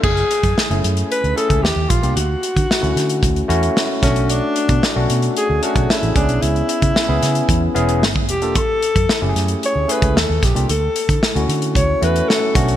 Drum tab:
CC |x---------------|----------------|----------------|----------------|
HH |-xxx-xxxxxxx--xx|x-xx-xxxxxxx--xx|x-xx--xxx-xx-xxx|xxxx--xxx-xx--xx|
SD |----o-------o---|----o-o-----o-o-|----o-------o---|----o-o-----o---|
BD |o--o-------o--o-|---o----o-----o-|---o-------o--o-|---o----o----o--|

CC |----------------|----------------|
HH |x-xx--xxx-xx--xx|x-xx-xxxx-xx--xx|
SD |----o-o-----o-o-|----o-------o---|
BD |o--o-------o--o-|---o----o-----o-|